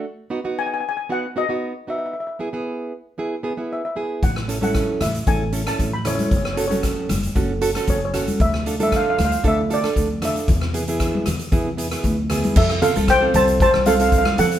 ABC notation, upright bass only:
X:1
M:4/4
L:1/16
Q:1/4=115
K:Emix
V:1 name="Upright bass" clef=bass
z16 | z16 | A,,,6 A,,,2 A,,,4 A,,,4 | F,,,6 F,,,2 F,,,4 F,,,4 |
D,,6 D,,2 D,,4 D,,4 | E,,6 E,,2 E,,4 D,,4 | =F,,3 =C,,3 C,,3 C,,4- C,, =F,2 |]